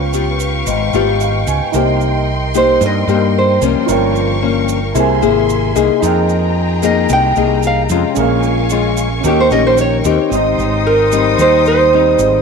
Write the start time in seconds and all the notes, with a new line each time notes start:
Already playing: C#2 C#3 F4 B4 C#5 F5 G5 C#6
0.13 B3 F4 G4, shaker
0.40 shaker
0.67 G#1 G#2, shaker
0.93 G#1 B3 F4 G4 D#5, shaker
1.20 F5, shaker
1.47 C#2 G#5, shaker
1.72 C2 C3 A#3 D#4 G4 A#4 C5 D#5 C6, shaker
1.78 G5
2.01 shaker
2.54 A#3 D#4 G4 C5, shaker
2.81 G2, shaker
2.86 D#5
3.07 G2 A#3 D#4 G4, shaker
3.38 C5
3.61 C2 F3 A#3 C#4, shaker
3.86 G1 G2 F4 A#4 F5 C#6, shaker
3.90 C#5 G5
4.15 shaker
4.42 F3 A#3 C#4
4.69 shaker
4.94 C2 C3 A#3 E4 G#4 A#4 C5 E5 G#5 C6, shaker
5.00 G#5
5.22 G#1 A#3 E4 G#4, shaker
5.50 shaker
5.75 C2 A#3 D#4 G#4, shaker
6.00 F2 F3 D#4 G#4 D#5 G5 A#5, shaker
6.04 A#4 G5
6.29 shaker
6.82 A#3 D#4 G#4 D#5, shaker
7.09 C2 C3 G5, shaker
7.36 C2 A#3 D#4 G#4, shaker
7.63 shaker
7.67 F5
7.89 F2 G#3 C#4 F4, shaker
8.14 A#1 A#2 C#4 G#4 A#4 F5 G#5 C#6, shaker
8.20 F5
8.43 shaker
8.70 G#3 C#4 F4, shaker
8.97 shaker
9.20 D#2 C#4 G4 A#4 D#5 G5, shaker
9.24 D#3 A#3 C#4 G4 A#4 D#5
9.40 C5
9.51 A#1 A#3 C#4 G4 D#5, shaker
9.67 C5
9.78 C#5, shaker
10.05 D#2 C4 D#4 G4, shaker
10.29 G#1 G#2 C4 D#4 G4 C5 G5 C6, shaker
10.33 C5 D#5 D#6
10.58 G#1, shaker
10.87 A#4
11.12 G3 C4 D#4, shaker
11.38 D#2 D#3 C5, shaker
11.65 C5, shaker
11.93 G3 C4 D#4
12.18 G#1 C4 G4 G#4 D#5, shaker